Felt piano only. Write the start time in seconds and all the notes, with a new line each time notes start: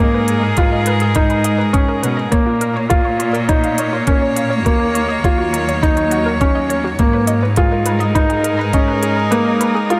0.00 A#3
0.58 F4
1.16 D#4
1.73 C#4
2.32 A#3
2.90 F4
3.49 D#4
4.07 C#4
4.66 A#3
5.25 F4
5.83 D#4
6.41 C#4
6.99 A#3
7.57 F4
8.15 D#4
8.74 C#4
9.31 A#3
9.90 F4